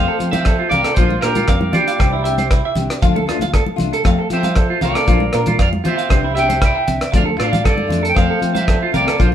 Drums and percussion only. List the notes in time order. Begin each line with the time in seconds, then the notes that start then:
0.20 closed hi-hat
0.33 closed hi-hat, high conga
0.45 kick, cross-stick, closed hi-hat
0.71 closed hi-hat, low conga
0.84 cross-stick, closed hi-hat
0.96 kick, closed hi-hat
1.10 high conga
1.22 cross-stick, closed hi-hat
1.35 closed hi-hat, high conga
1.48 kick, cross-stick, closed hi-hat
1.61 high conga
1.73 closed hi-hat, low conga
1.88 closed hi-hat
2.00 kick, cross-stick, closed hi-hat
2.25 closed hi-hat
2.38 closed hi-hat, high conga
2.51 kick, cross-stick, closed hi-hat
2.75 closed hi-hat, low conga
2.90 cross-stick, closed hi-hat
3.03 kick, closed hi-hat
3.16 high conga
3.29 cross-stick, closed hi-hat
3.41 closed hi-hat, high conga
3.54 kick, cross-stick, closed hi-hat
3.67 high conga
3.78 closed hi-hat, low conga
3.93 closed hi-hat
4.05 kick, cross-stick, closed hi-hat
4.30 closed hi-hat
4.43 closed hi-hat, high conga
4.55 kick, cross-stick, closed hi-hat
4.81 closed hi-hat, low conga
4.95 cross-stick, closed hi-hat
5.08 kick, closed hi-hat
5.20 high conga
5.33 cross-stick, closed hi-hat
5.46 closed hi-hat, high conga, low conga
5.59 kick, cross-stick, closed hi-hat
5.73 high conga
5.85 closed hi-hat, low conga
5.99 closed hi-hat
6.10 kick, cross-stick, closed hi-hat
6.37 closed hi-hat
6.50 closed hi-hat, high conga
6.62 kick, cross-stick, closed hi-hat
6.88 closed hi-hat, low conga
7.01 cross-stick, closed hi-hat
7.14 kick, closed hi-hat
7.40 cross-stick, closed hi-hat
7.53 closed hi-hat, high conga, low conga
7.65 kick, cross-stick, closed hi-hat
7.78 high conga
7.90 closed hi-hat, low conga
8.05 closed hi-hat
8.16 kick, cross-stick, closed hi-hat
8.42 closed hi-hat
8.55 closed hi-hat, high conga
8.68 kick, cross-stick, closed hi-hat
8.94 closed hi-hat, low conga
9.08 cross-stick, closed hi-hat
9.20 kick, closed hi-hat